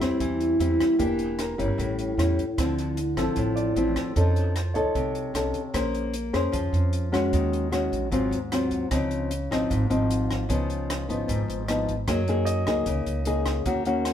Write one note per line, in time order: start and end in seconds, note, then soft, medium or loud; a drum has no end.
0.00 0.10 E2 medium
0.00 0.18 A2 medium
0.00 0.57 G3 medium
0.00 0.57 C4 medium
0.00 0.57 E4 medium
0.00 1.01 E5 soft
0.00 kick soft
0.00 cross-stick medium
0.00 closed hi-hat soft
0.20 0.57 E2 medium
0.20 0.97 E3 medium
0.20 kick soft
0.20 closed hi-hat soft
0.41 closed hi-hat soft
0.60 0.78 E2 medium
0.60 0.96 G3 soft
0.60 0.96 C4 soft
0.60 0.97 E4 medium
0.60 closed hi-hat soft
0.80 kick soft
0.80 cross-stick medium
0.80 closed hi-hat soft
0.99 1.55 E1 medium
0.99 1.58 E3 medium
0.99 1.55 A#3 medium
0.99 1.56 D4 soft
0.99 1.56 G4 medium
0.99 kick medium
0.99 closed hi-hat soft
1.19 closed hi-hat soft
1.39 1.76 A#4 soft
1.39 cross-stick medium
1.39 closed hi-hat soft
1.58 1.68 G1 medium
1.58 2.15 G3 medium
1.58 2.15 C#4 medium
1.58 2.15 E4 medium
1.58 kick soft
1.58 closed hi-hat soft
1.78 2.15 A1 medium
1.78 2.55 A2 medium
1.78 kick soft
1.78 closed hi-hat soft
1.99 closed hi-hat soft
2.18 2.36 E2 medium
2.18 2.44 G3 medium
2.18 2.44 C#4 medium
2.18 2.44 E4 medium
2.18 cross-stick soft
2.18 closed hi-hat soft
2.38 kick soft
2.38 closed hi-hat soft
2.58 3.13 D2 medium
2.58 3.35 D3 medium
2.58 2.97 F3 soft
2.58 2.97 C4 medium
2.58 2.98 E4 soft
2.58 kick medium
2.58 cross-stick medium
2.58 closed hi-hat soft
2.79 closed hi-hat soft
2.97 closed hi-hat soft
3.17 3.26 A1 medium
3.17 3.73 F3 medium
3.17 3.73 C4 medium
3.17 3.74 E4 medium
3.17 3.83 A4 medium
3.17 kick soft
3.17 cross-stick medium
3.17 closed hi-hat soft
3.36 3.74 A1 medium
3.36 4.14 A2 soft
3.36 kick medium
3.36 closed hi-hat soft
3.56 4.21 D5 soft
3.56 closed hi-hat soft
3.76 3.95 A1 medium
3.76 4.13 F3 medium
3.76 4.13 C4 medium
3.76 4.14 E4 medium
3.76 closed hi-hat soft
3.96 kick soft
3.96 cross-stick medium
3.96 closed hi-hat soft
4.16 4.72 F2 medium
4.16 4.93 F3 soft
4.16 4.55 C#4 medium
4.16 4.56 D#4 medium
4.16 4.56 A4 medium
4.16 kick medium
4.16 closed hi-hat soft
4.36 closed hi-hat soft
4.56 cross-stick soft
4.56 closed hi-hat soft
4.74 4.85 C2 medium
4.74 5.32 D#4 medium
4.74 5.32 A4 medium
4.74 5.40 C#5 soft
4.74 kick soft
4.74 closed hi-hat soft
4.95 5.32 C2 medium
4.95 5.72 C3 soft
4.95 kick medium
4.95 closed hi-hat soft
5.15 closed hi-hat soft
5.34 5.53 C2 medium
5.34 5.60 C#4 soft
5.34 5.61 D#4 soft
5.34 5.61 A4 medium
5.34 cross-stick medium
5.34 closed hi-hat soft
5.54 kick soft
5.54 closed hi-hat soft
5.74 6.30 A#1 medium
5.74 6.51 A#3 medium
5.74 6.14 C#4 soft
5.74 6.14 G#4 soft
5.74 6.14 C5 medium
5.74 kick medium
5.74 cross-stick medium
5.74 closed hi-hat soft
5.95 closed hi-hat soft
6.14 closed hi-hat soft
6.33 6.52 F2 medium
6.33 7.09 C#4 medium
6.33 7.10 G#4 medium
6.33 7.10 C5 medium
6.33 kick soft
6.33 cross-stick medium
6.33 closed hi-hat soft
6.52 6.72 F2 medium
6.52 7.30 F3 medium
6.52 kick medium
6.52 closed hi-hat soft
6.73 7.28 F2 medium
6.73 closed hi-hat soft
6.93 closed hi-hat soft
7.12 7.69 G#3 medium
7.12 7.69 C#4 medium
7.12 7.69 F#4 medium
7.12 kick soft
7.12 cross-stick medium
7.12 closed hi-hat soft
7.33 7.88 D#2 medium
7.33 8.10 D#3 medium
7.33 kick medium
7.33 closed hi-hat soft
7.53 closed hi-hat soft
7.71 8.10 G#3 medium
7.71 8.10 C#4 medium
7.71 8.10 F#4 medium
7.71 cross-stick medium
7.71 closed hi-hat soft
7.92 8.12 A#1 medium
7.92 kick soft
7.92 closed hi-hat soft
8.11 8.31 G#1 medium
8.11 8.89 G#2 medium
8.11 8.37 F#3 medium
8.11 8.38 C4 medium
8.11 8.38 F4 medium
8.11 kick medium
8.11 closed hi-hat soft
8.31 8.87 D#2 medium
8.31 closed hi-hat soft
8.52 8.88 F#3 medium
8.52 8.88 C4 medium
8.52 8.88 F4 medium
8.52 cross-stick medium
8.52 closed hi-hat soft
8.71 kick soft
8.71 closed hi-hat soft
8.91 9.47 C#2 medium
8.91 9.68 C#3 medium
8.91 9.30 F3 medium
8.91 9.31 C4 medium
8.91 9.31 D#4 medium
8.91 kick medium
8.91 cross-stick medium
8.91 closed hi-hat soft
9.11 closed hi-hat soft
9.31 closed hi-hat soft
9.51 9.69 G#1 medium
9.51 9.87 F3 medium
9.51 9.87 C4 medium
9.51 9.88 D#4 medium
9.51 kick soft
9.51 cross-stick medium
9.51 closed hi-hat soft
9.70 9.89 G#1 medium
9.70 10.47 G#2 medium
9.70 kick medium
9.70 closed hi-hat soft
9.90 10.46 G#1 medium
9.90 10.46 F3 medium
9.90 10.46 C4 medium
9.90 10.46 D#4 medium
9.90 closed hi-hat soft
10.11 closed hi-hat soft
10.30 kick soft
10.30 cross-stick medium
10.30 closed hi-hat soft
10.49 11.05 C#2 medium
10.49 11.26 C#3 medium
10.49 11.06 F3 soft
10.49 11.06 B3 medium
10.49 11.06 D#4 medium
10.49 kick medium
10.49 closed hi-hat soft
10.70 closed hi-hat soft
10.90 cross-stick medium
10.90 closed hi-hat soft
11.09 11.27 G#1 medium
11.09 11.65 F3 medium
11.09 11.65 B3 medium
11.09 11.65 D#4 medium
11.09 kick soft
11.09 closed hi-hat soft
11.28 11.47 G#1 medium
11.28 12.06 G#2 medium
11.28 kick medium
11.28 closed hi-hat soft
11.48 12.04 G#1 medium
11.48 closed hi-hat soft
11.68 11.94 F3 medium
11.68 11.94 B3 soft
11.68 11.94 D#4 medium
11.68 cross-stick medium
11.68 closed hi-hat soft
11.88 kick soft
11.88 closed hi-hat soft
12.07 12.63 F#2 medium
12.07 12.85 F#3 medium
12.07 12.19 A#3 medium
12.07 12.20 D#4 medium
12.07 12.20 G#4 medium
12.07 kick medium
12.07 cross-stick medium
12.07 closed hi-hat soft
12.28 12.64 A#3 soft
12.28 12.64 D#4 medium
12.28 12.65 G#4 medium
12.28 closed hi-hat soft
12.45 13.12 D#5 medium
12.45 closed hi-hat soft
12.66 12.85 C#2 medium
12.66 13.23 A#3 medium
12.66 13.24 D#4 medium
12.66 13.24 G#4 medium
12.66 kick soft
12.66 cross-stick medium
12.66 closed hi-hat soft
12.86 13.05 C#2 medium
12.86 13.64 C#3 soft
12.86 kick medium
12.86 closed hi-hat soft
13.06 13.62 C#2 medium
13.06 closed hi-hat soft
13.25 13.64 A#3 medium
13.25 13.65 D#4 soft
13.25 13.65 G#4 medium
13.25 closed hi-hat soft
13.46 kick soft
13.46 cross-stick medium
13.46 closed hi-hat soft
13.65 14.13 D#2 medium
13.65 14.13 D#3 soft
13.65 13.83 A#3 medium
13.65 13.83 C#4 medium
13.65 13.83 F#4 medium
13.65 kick medium
13.65 closed hi-hat soft
13.85 14.13 A#3 medium
13.85 14.13 C#4 medium
13.85 14.13 F#4 medium
13.85 closed hi-hat soft
14.05 cross-stick medium
14.05 closed hi-hat soft